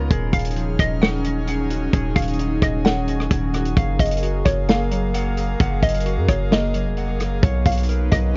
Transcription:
Already playing: C#3 B3 D#4 F4
0.10 D#1 D#3 F#3 C#4 D#4 G#4 F6, kick, closed hi-hat
0.33 D#1 F5, kick, closed hi-hat
0.39 closed hi-hat
0.45 closed hi-hat
0.51 closed hi-hat
0.56 F3, closed hi-hat
0.79 D#1 D#5, kick, cross-stick, closed hi-hat
1.02 C#4 F#5, snare
1.25 D#3, closed hi-hat
1.48 G#4, closed hi-hat
1.70 F#4, closed hi-hat
1.93 D#1 F#4 G#4, kick, closed hi-hat
2.16 D#1 F5, kick, closed hi-hat
2.22 closed hi-hat
2.28 closed hi-hat
2.34 closed hi-hat
2.39 D#4, closed hi-hat
2.62 D#1 D#5, kick, cross-stick, closed hi-hat
2.85 C#4 F#5, snare
3.08 D#3, closed hi-hat
3.20 cross-stick
3.31 D#1 G#4, kick, closed hi-hat
3.54 F#4, cross-stick, closed hi-hat
3.65 closed hi-hat
3.77 F#1 F#3 A#3 G#4 A#4 F5, kick, closed hi-hat
3.99 F#1 D#5, kick, closed hi-hat
4.05 closed hi-hat
4.11 closed hi-hat
4.17 closed hi-hat
4.23 F#4, closed hi-hat
4.45 F#1 C#5, kick, cross-stick, closed hi-hat
4.69 A#3 F5, snare
4.91 F#3, closed hi-hat
5.14 F#5, closed hi-hat
5.37 G#4, closed hi-hat
5.60 F#1 F#5, kick, closed hi-hat
5.83 F#1 D#5, kick, closed hi-hat
5.89 closed hi-hat
5.95 closed hi-hat
6.00 closed hi-hat
6.06 F#4, closed hi-hat
6.17 F#2
6.29 F#1 C#5, kick, cross-stick, closed hi-hat
6.51 A#3 D#5, snare
6.74 F#3, closed hi-hat
6.86 F1
6.97 F#5, closed hi-hat
7.15 F#1
7.20 G#4, cross-stick, closed hi-hat
7.43 B1 F#3 B3 C#4 D#4 A#4 C#5 D#5, kick, closed hi-hat
7.66 B1 F5, kick, closed hi-hat
7.72 closed hi-hat
7.78 closed hi-hat
7.83 closed hi-hat
7.89 A#4, closed hi-hat
8.11 B1 D#5, kick, cross-stick, closed hi-hat

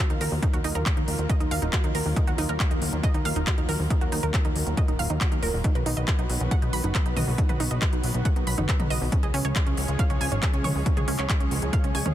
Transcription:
Already playing: D#3 F#3 A#3 F4 A#4
0.10 D#2 D#4, closed hi-hat
0.21 D#2 A#4, open hi-hat
0.32 D#2
0.43 D#4, kick, closed hi-hat
0.53 D#2 F#4, closed hi-hat
0.64 D#2 D#4, open hi-hat
0.75 D#2 A#4, closed hi-hat
0.86 kick, clap, closed hi-hat
0.97 D#2 D#4, closed hi-hat
1.08 D#2, open hi-hat
1.19 D#2, closed hi-hat
1.29 D#5, kick, closed hi-hat
1.40 D#2 D#4, closed hi-hat
1.51 D#2 F5, open hi-hat
1.62 D#1 D#4, closed hi-hat
1.73 F#4, kick, clap, closed hi-hat
1.84 D#2 D#4, closed hi-hat
1.95 D#2 A#4, open hi-hat
2.06 D#2
2.16 D#4, kick, closed hi-hat
2.27 D#2 F#4, closed hi-hat
2.38 D#2 D#4, open hi-hat
2.49 D#2 A#4, closed hi-hat
2.60 kick, clap, closed hi-hat
2.71 D#2 D#4, closed hi-hat
2.82 D#2, open hi-hat
2.92 D#2, closed hi-hat
3.03 D#5, kick, closed hi-hat
3.14 D#2 D#4, closed hi-hat
3.25 D#2 F5, open hi-hat
3.36 D#1 D#4, closed hi-hat
3.47 F#4, kick, clap, closed hi-hat
3.58 D#2 D#4, closed hi-hat
3.69 D#2 A#4, open hi-hat
3.80 D#2
3.90 D#4, kick, closed hi-hat
4.01 D#2 F#4, closed hi-hat
4.12 D#2 D#4, open hi-hat
4.23 D#2 A#4, closed hi-hat
4.34 kick, clap, closed hi-hat
4.45 D#2 D#4, closed hi-hat
4.56 D#2, open hi-hat
4.67 D#2, closed hi-hat
4.77 D#5, kick, closed hi-hat
4.88 D#1 D#4, closed hi-hat
4.99 D#1 F5, open hi-hat
5.10 D#2 D#4, closed hi-hat
5.21 F#4, kick, clap, closed hi-hat
5.32 D#2 D#4, closed hi-hat
5.43 D#1 A#4, open hi-hat
5.54 D#1
5.64 B3 D#4 F#4 B4, kick, closed hi-hat
5.75 B1 B4, closed hi-hat
5.86 B1 D#4, open hi-hat
5.97 B1 D#5, closed hi-hat
6.08 kick, clap, closed hi-hat
6.19 B1 D#4, closed hi-hat
6.30 B1, open hi-hat
6.40 B1, closed hi-hat
6.51 F#5, kick, closed hi-hat
6.62 B1 D#4, closed hi-hat
6.73 B1 B5, open hi-hat
6.84 F#1 D#4, closed hi-hat
6.95 B4, kick, clap, closed hi-hat
7.06 B1 D#4, closed hi-hat
7.17 B1 D#5, open hi-hat, mid tom
7.27 B1
7.38 D#4, kick, closed hi-hat
7.49 B1 B4, closed hi-hat, mid tom
7.60 B1 D#4, open hi-hat
7.71 B1 D#5, closed hi-hat
7.82 kick, clap, closed hi-hat
7.93 B1 D#4, closed hi-hat
8.03 B1, open hi-hat
8.14 B1, closed hi-hat
8.25 F#5, kick, closed hi-hat
8.36 B1 D#4, closed hi-hat
8.47 B1 B5, open hi-hat
8.58 F#1 D#4, closed hi-hat, mid tom
8.69 B4, kick, clap, closed hi-hat
8.80 B1 D#4, closed hi-hat, mid tom
8.90 B1 D#5, open hi-hat
9.01 B1
9.12 F3 G#3 C#4 G#4 C#5, kick, closed hi-hat
9.23 C#2 G#4, closed hi-hat
9.34 C#2 C#4, open hi-hat
9.45 C#2 C#5, closed hi-hat
9.56 kick, clap, closed hi-hat
9.66 C#2 C#4, closed hi-hat
9.77 C#2, open hi-hat
9.88 C#2, closed hi-hat
9.99 F5, kick, closed hi-hat
10.10 C#2 C#4, closed hi-hat
10.21 C#2 G#5, open hi-hat
10.32 G#1 C#4, closed hi-hat
10.43 G#4, kick, clap, closed hi-hat
10.53 C#2 C#4, closed hi-hat
10.64 C#2 C#5, open hi-hat, mid tom
10.75 C#2
10.86 C#4, kick, closed hi-hat
10.97 C#2 G#4, closed hi-hat, mid tom
11.08 C#2 C#4, open hi-hat
11.19 C#2 C#5, clap, closed hi-hat
11.30 kick, clap, closed hi-hat
11.40 C#2 C#4, closed hi-hat
11.51 C#2, open hi-hat
11.62 C#2, closed hi-hat
11.73 F5, kick, closed hi-hat
11.84 C#2 C#4, closed hi-hat
11.95 C#2 G#5, open hi-hat
12.06 D#2 C#4, closed hi-hat, mid tom

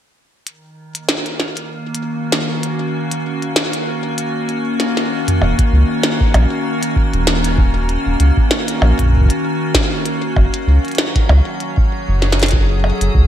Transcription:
0.47 D#3, closed hi-hat
0.92 A#3, closed hi-hat
1.09 snare
1.26 closed hi-hat
1.40 snare
1.57 closed hi-hat
1.76 C#4
1.84 F#4
1.95 closed hi-hat
2.32 snare, closed hi-hat
2.63 closed hi-hat
3.12 closed hi-hat
3.42 closed hi-hat
3.56 snare
3.73 closed hi-hat
4.18 closed hi-hat
4.49 closed hi-hat
4.80 snare, closed hi-hat
4.97 snare
5.28 closed hi-hat, mid tom
5.42 D#1, percussion blips
5.59 kick, closed hi-hat
5.73 C#2
6.03 snare, closed hi-hat
6.21 kick
6.34 A#1, closed hi-hat, percussion blips
6.83 closed hi-hat
6.96 kick
7.13 D#1, closed hi-hat
7.27 snare
7.44 closed hi-hat
7.58 kick
7.89 closed hi-hat
8.06 D#1
8.20 C#2, closed hi-hat
8.37 kick
8.51 snare
8.68 closed hi-hat
8.82 A#1, percussion blips
8.99 kick, closed hi-hat
9.02 kick
9.06 kick
9.09 kick
9.13 kick
9.17 kick
9.21 kick
9.26 kick
9.30 closed hi-hat
9.75 kick, snare, closed hi-hat
10.06 closed hi-hat
10.36 F#1 F#3, kick, percussion blips
10.54 closed hi-hat
10.67 C#2
10.85 closed hi-hat
10.88 closed hi-hat
10.92 closed hi-hat
10.95 snare, closed hi-hat
11.16 kick, closed hi-hat
11.29 C#2, percussion blips
11.60 closed hi-hat
11.75 G#4, kick
12.09 F#1
12.22 snare
12.32 snare
12.39 A4, closed hi-hat
12.42 snare, closed hi-hat
12.46 closed hi-hat
12.48 closed hi-hat
12.51 kick, closed hi-hat
12.84 percussion blips
13.01 F#1, closed hi-hat
13.15 C#2, kick

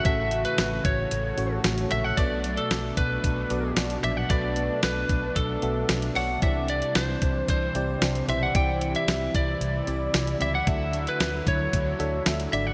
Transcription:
Already playing: C#3 A3 C#4 F#4 A4 E5
0.05 A1 A2 E3 A3 C#4 F#4 A4 E5 F#5, kick, closed hi-hat
0.31 E3 A3, closed hi-hat
0.45 B4, closed hi-hat
0.58 A1, snare, closed hi-hat, tambourine
0.85 A1 C#5, kick, closed hi-hat
1.10 A1 A2 E3, closed hi-hat
1.16 A3
1.37 A1 C#4 F#4 A4 C#5, closed hi-hat
1.64 A1, snare, closed hi-hat, tambourine
1.78 closed hi-hat
1.91 A#1 C#4 F#4 A4 E5, closed hi-hat
2.05 F#5
2.17 B1 B2 F#3 B3 D4 F#4 A4 D5, kick, closed hi-hat
2.43 F#3 B3, closed hi-hat
2.57 A4, closed hi-hat
2.71 B1, snare, closed hi-hat, tambourine
2.97 B1 B4, kick, closed hi-hat
3.23 B1 B2 F#3, kick, closed hi-hat
3.29 B3
3.50 B1 B3 F#4 A4 D5, closed hi-hat
3.76 B1, snare, closed hi-hat, tambourine
3.90 closed hi-hat
4.03 A#1 B3 F#4 A4 D5 E5, closed hi-hat
4.17 F#5
4.29 B1 B2 F#3 B3 F#4 A4 B4 D5, kick, closed hi-hat
4.56 F#3 B3, closed hi-hat
4.83 B1 B4, snare, closed hi-hat, tambourine
5.09 B1, kick, closed hi-hat
5.34 B1 B2 F#3 A4, kick, closed hi-hat
5.40 B3
5.62 B1 B3 F#4 A4 E5, closed hi-hat
5.89 B1, snare, closed hi-hat, tambourine
6.02 closed hi-hat
6.15 B1 B3 F#4 A4 C#5 F#5, open hi-hat
6.42 C2 C3 E3 G3 C4 E4 G4 D5 E5, kick, closed hi-hat
6.68 G3 C4 D5, closed hi-hat
6.82 closed hi-hat
6.95 C2 C5, snare, closed hi-hat, tambourine
7.22 C2, kick, closed hi-hat
7.47 C2 C3 G3 C5, kick, closed hi-hat
7.53 C4
7.75 C2 C4 E4 G4 D5, closed hi-hat
8.02 C2, snare, closed hi-hat, tambourine
8.15 closed hi-hat
8.28 B1 C4 E4 G4 C5 E5, closed hi-hat
8.43 F#5
8.54 C2 C3 G3 C4 E4 G4 D5 G5, kick, closed hi-hat
8.80 G3 C4, closed hi-hat
8.95 E5, closed hi-hat
9.08 C2, snare, closed hi-hat, tambourine
9.34 C2 D5, kick, closed hi-hat
9.59 C2 C3 G3, closed hi-hat
9.65 C4
9.87 C2 C4 E4 G4 D5, closed hi-hat
10.14 C2, snare, closed hi-hat, tambourine
10.27 closed hi-hat
10.40 C#2 C4 E4 G4 D5 E5, closed hi-hat
10.55 F#5
10.66 D2 D3 F#3 A3 D4 F#4 A4 E5, kick, closed hi-hat
10.93 A3 D4, closed hi-hat
11.07 B4, closed hi-hat
11.20 D2, snare, closed hi-hat, tambourine
11.47 D2 C#5, kick, closed hi-hat
11.71 D2 D3 A3, kick, closed hi-hat
11.78 D4
11.99 D2 D4 F#4 A4 E5, closed hi-hat
12.26 D2, snare, closed hi-hat, tambourine
12.40 closed hi-hat
12.52 G#1 D4 F#4 A4 D5 E5, closed hi-hat
12.67 F#5

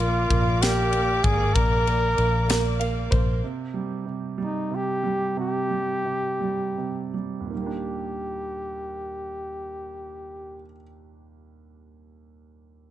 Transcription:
Already playing: A#1 F4 A#4 D5 F5 D6
0.00 A#3, ride
0.30 A#1 A#3, kick, ride
0.62 A#3 G4, snare, ride
0.93 A#3, ride
1.23 G#1 A#3 G#4, kick, ride
1.54 A#1 A#3 A#4, kick, ride
1.87 A#3, ride
2.17 A#1 A#3, ride
2.48 A#3, snare, ride
2.79 A#3 F5, ride
3.11 A#1 A#3 C5, kick, ride
3.44 C3
3.74 G3
4.06 C3
4.38 G3
4.43 D#4
4.71 C3
4.75 G4
5.04 G3
5.37 C3 G4
5.71 G3
6.05 C3
6.41 G3
6.78 C3
7.14 G3
7.40 D#2
7.46 A#2
7.51 D#3 G4
7.56 G3
7.61 A#3
7.66 D4

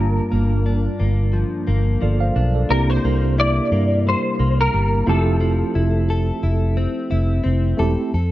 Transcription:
Already playing: G1 G2 A#3 D4 F4 A#4 A5
0.32 G1 A#3
0.66 D4
0.99 G1 A#3
1.33 F3
1.67 G1 A#3
2.01 G1 F3 A4 D5
2.20 C5 F5
2.36 B1 D4
2.55 A4 D5
2.69 C2 C3 A#3 D4 E4 G4 A#4
2.90 C5
3.05 C2 A#3
3.38 E4 D5
3.72 G2 A#3
4.07 G3 C5
4.39 C2 A#3
4.61 A#4
4.74 G1 G3
5.06 F1 F3 A3 C4 E4 G4 A4
5.41 F3
5.75 F1 E4
6.10 A4
6.43 F1 E4
6.77 C4
7.11 F1 E4
7.44 F1 C4
7.77 E1 A3 C4 E4 G4 A4
8.14 F2 A4

